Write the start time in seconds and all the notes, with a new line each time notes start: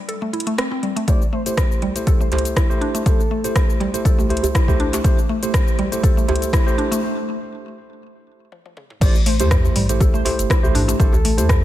Already playing: A3 D4 F4 C5
0.09 A4, closed hi-hat
0.22 A3
0.33 E4, closed hi-hat
0.40 closed hi-hat
0.47 A3, closed hi-hat
0.58 C4, cross-stick, closed hi-hat
0.72 C4
0.83 G3, closed hi-hat
0.96 A3, closed hi-hat
1.08 A3 E4 G4 C5 D5, kick, closed hi-hat, cabasa
1.22 cabasa
1.32 A3 C5
1.46 A3 E4 G4 C5, closed hi-hat, cabasa
1.57 kick, cross-stick, closed hi-hat, cabasa
1.72 cabasa
1.82 G3, closed hi-hat, mid tom, djembe tone
1.96 A3 E4 G4 C5, closed hi-hat, cabasa
2.07 A4, kick, closed hi-hat, djembe tone, cabasa
2.20 A3 C5, cabasa
2.32 A3 E4 G4 C5, closed hi-hat, djembe slap, djembe tone, djembe bass
2.38 closed hi-hat
2.45 closed hi-hat, cabasa
2.56 E4, kick, cross-stick, closed hi-hat, cabasa
2.70 A3 E4 G4 C5, cabasa
2.81 D4, closed hi-hat, mid tom
2.95 A3, closed hi-hat, cabasa
3.06 A3 E4 G4 A4 C5, kick, closed hi-hat, cabasa
3.20 cabasa
3.31 A3
3.44 A3 E4 G4 C5, closed hi-hat, cabasa
3.56 kick, cross-stick, closed hi-hat, cabasa
3.70 cabasa
3.80 G3, closed hi-hat, mid tom, djembe slap
3.94 A3 E4 G4 C5, closed hi-hat, cabasa
4.05 A4, kick, closed hi-hat, mid tom, cabasa
4.18 A3, djembe tone, cabasa
4.29 A3 E4 G4 C5, closed hi-hat, djembe tone
4.37 closed hi-hat
4.43 closed hi-hat, djembe tone, djembe bass, cabasa
4.55 E4, kick, cross-stick, closed hi-hat, cabasa
4.68 A3 E4 G4 C5, kick, djembe tone, djembe bass, cabasa
4.80 D4, closed hi-hat
4.93 A3, closed hi-hat, djembe slap, cabasa
5.04 A3 E4 G4 C5, kick, closed hi-hat, cabasa
5.18 cabasa
5.29 A3
5.43 A3 E4 G4 C5, closed hi-hat, cabasa
5.54 kick, cross-stick, closed hi-hat, cabasa
5.68 cabasa
5.78 G3, closed hi-hat, mid tom, djembe tone
5.92 A3 E4 G4 C5, closed hi-hat, cabasa
6.03 A4, kick, closed hi-hat, djembe tone, cabasa
6.17 A3, cabasa
6.28 A3 E4 G4 C5, closed hi-hat, djembe slap, djembe tone, djembe bass
6.36 closed hi-hat
6.42 closed hi-hat, cabasa
6.53 E4, kick, cross-stick, closed hi-hat, cabasa
6.67 A3 E4 G4 C5, cabasa
6.78 D4, closed hi-hat, mid tom
6.92 A3, closed hi-hat, cabasa
8.52 high tom
8.66 high tom
8.77 mid tom
8.90 mid tom
9.01 A1 A3 E4 G4 C5 D5, kick, closed hi-hat, crash, cabasa
9.15 djembe tone, cabasa
9.26 A3 C5, open hi-hat
9.40 E2 A3 E4 G4 C5, closed hi-hat, djembe tone, cabasa
9.51 kick, cross-stick, closed hi-hat, mid tom, cabasa
9.64 djembe tone, cabasa
9.76 A1 G3, mid tom, open hi-hat
9.89 A3 E4 G4 C5, closed hi-hat, cabasa
10.01 A4, kick, closed hi-hat, djembe tone, djembe bass, cabasa
10.13 A1 A3 C5, cabasa
10.24 A3 E4 G4 C5, open hi-hat, djembe slap, djembe tone
10.38 G1, closed hi-hat, cabasa
10.50 E4, kick, cross-stick, closed hi-hat, djembe tone, cabasa
10.63 A1 A3 E4 G4 C5, djembe bass, cabasa
10.75 D4, mid tom, open hi-hat
10.88 A3, closed hi-hat, djembe tone, cabasa
10.99 A1 A3 E4 G4 A4 C5, kick, closed hi-hat, cabasa
11.13 djembe tone, djembe bass, cabasa
11.25 A3, open hi-hat
11.38 E2 A3 E4 G4 C5, closed hi-hat, djembe tone, cabasa
11.49 kick, cross-stick, closed hi-hat, mid tom, cabasa